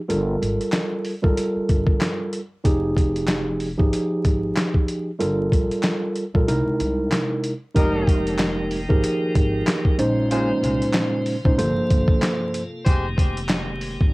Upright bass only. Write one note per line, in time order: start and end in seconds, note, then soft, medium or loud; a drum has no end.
0.10 0.35 G1 loud
0.42 0.56 G#1 medium
1.24 1.35 G#1 medium
1.56 muted upright bass stroke soft
1.70 1.95 G1 medium
2.65 3.75 F1 loud
3.80 3.90 G#1 medium
4.25 4.50 G#1 medium
5.21 5.46 G1 loud
5.52 5.67 A#1 medium
6.35 6.45 A#1 medium
6.48 6.63 C2 loud
6.67 muted upright bass stroke soft
6.80 7.05 C2 medium
7.76 8.86 F1 loud
8.90 9.01 G#1 medium
9.36 9.61 G#1 loud
9.99 10.49 A#1 loud
10.63 10.78 C2 medium
11.46 11.56 C2 medium
11.59 11.73 G1 loud
11.77 muted upright bass stroke soft
11.91 12.16 G1 medium
12.86 13.96 F1 loud
14.01 14.11 G#1 medium